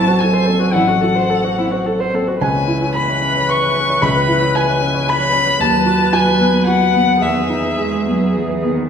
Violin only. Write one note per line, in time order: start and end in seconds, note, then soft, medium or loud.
0.00 0.21 A5 loud
0.19 0.75 G#5 loud
0.73 2.13 F#5 medium
2.42 2.92 G#5 medium
2.95 3.51 B5 medium
3.50 4.04 C#6 loud
4.03 4.57 B5 loud
4.56 5.11 G#5 loud
5.10 5.63 B5 loud
5.61 6.15 A5 loud
6.13 6.66 G#5 loud
6.66 7.24 F#5 loud
7.22 8.34 E5 medium